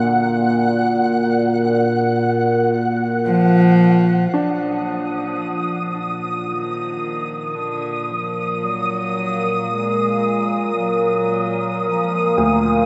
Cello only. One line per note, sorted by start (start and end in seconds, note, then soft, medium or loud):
3.27 4.34 F3 loud
4.33 5.41 F#3 medium
5.40 6.50 F3 medium
6.48 7.57 D#3 medium
7.56 8.11 D3 medium
8.10 8.65 F3 medium
8.63 9.71 F#3 medium
9.69 10.76 G#3 medium
10.77 11.88 F#3 medium
11.86 12.65 F3 medium